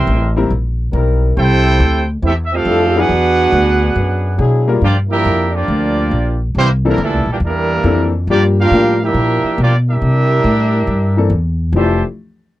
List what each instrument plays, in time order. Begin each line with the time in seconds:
Already playing: trombone section E3 G3 C4, trumpet section A#4 E5 G5 C6
0.07 upright bass A1
0.36 grand piano G3 A#3 C4 E4 A#4
0.50 upright bass A#1
0.91 upright bass B1, trombone section G3 C4 E4 A#4
1.36 upright bass C2, trombone section C4 E4 G4, trumpet section E4 A4 C5 G5
1.80 upright bass D2
2.22 upright bass E2, trombone section A3 C4 E4, trumpet section C4 E5
2.26 trumpet section G4 A4
2.46 trumpet section E5
2.53 trombone section A3 C4 F4, trumpet section C4 G4 A4 F5
2.65 upright bass F2, trombone section G3 D4 E4 A4
2.96 grand piano F#3 B3 D4 E4 G#4, trombone section B3 D4 F#4, trumpet section D4 G#4 B4 F#5
3.09 upright bass E2
3.52 upright bass D2
3.96 upright bass F#2
4.38 upright bass B2, trombone section F#3 D4 E4 G#4
4.68 grand piano G3 A#3 D4 F4 A#4
4.82 upright bass G2, trombone section F3 A#3 D4, trumpet section A#3 F4 G4 D5
5.09 trombone section F3 A#3 E4, trumpet section D4 G4 A#4 E5
5.25 upright bass F2
5.51 trombone section F3 A#3 D4
5.56 trumpet section A#3 F4 G4 D5
5.68 upright bass D2
6.11 upright bass A#1
6.55 upright bass C2, trombone section E3 G3 C4, trumpet section E4 G4 C5
6.59 trumpet section A#3
6.85 grand piano E3 A#3 C4 D4 A4, trombone section E3 G3 A#3, trumpet section G3 D4 E4 A#4
6.98 upright bass D2, trombone section A#2 E3 A3
7.03 trumpet section G3 D4 E4 A4
7.12 upright bass C2
7.26 upright bass A#1
7.31 trombone section A#2 E3 G3, trumpet section A#3 D4 G4
7.40 upright bass E2
7.45 trombone section E3 G3 A#3, trumpet section G3 D4 E4 A#4
7.84 upright bass F2, grand piano E3 A#3 C4 D4 A4
8.27 upright bass G2, grand piano F3 G3 A#3 D4 G4, trombone section F3 A#3 D4, trumpet section A#3 F4 G4 D5
8.59 trombone section A#3 D4 F4, trumpet section D4 G4 A#4 F5
8.71 upright bass A2, grand piano F3 G3 A#3 D4 G4
9.02 trombone section F3 A#3 E4, trumpet section D4 G4 A#4 E5
9.14 upright bass A#2
9.44 muted upright bass stroke
9.58 upright bass B2, trombone section F3 A#3 D4
9.63 trumpet section A#3 F4 G4 D5
9.89 trombone section G3 E4 A#4, trumpet section D4 G4 A#4 E5
10.02 upright bass C3
10.44 upright bass A2
10.87 upright bass G2
11.17 grand piano E3 A#3 C4 D4 A4
11.30 upright bass E2
11.72 upright bass F1, trombone section F2 C3 E3 A3, grand piano F3 A3 D4 E4
11.77 grand piano G4, trumpet section G4 C5 E5 A5